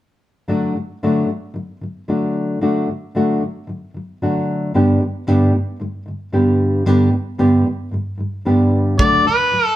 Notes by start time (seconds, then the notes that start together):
0.48 D3 F#3 A3 D4 F#4
0.75 D3 F#3
1.03 D3 F#3 A3 D4 F#4
1.27 D3 F#3
1.54 D3 F#3
1.81 D3 F#3
2.08 D3 F#3 A3 D4 F#4
2.61 D3 F#3 A3 D4 F#4
2.89 D3 F#3
3.15 D3 F#3 A3 D4 F#4
3.41 D3 F#3
3.67 D3 F#3
3.94 D3 F#3
4.22 D3 F#3 A3 D4 F#4
4.74 G2 D3 G3 B3 D4 G4
5.01 G2 D3 G3
5.27 G2 D3 G3 B3 D4 G4
5.53 G2
5.80 G2 D3 G3
6.06 G2 D3 G3
6.32 G2 D3 G3 B3 D4 G4
6.86 G2 D3 G3 B3 D4 G4
7.11 G2 D3 G3
7.38 G2 D3 G3 B3 D4 G4
7.65 G2 D3 G3
7.91 G2 D3 G3
8.18 G2 D3 G3
8.45 G2 D3 G3 B3 D4 G4
8.98 D3 F#3 A3 D4 F#4 D5, kick
9.24 D3 F#3 B4
9.51 D3 F#3
9.66 A4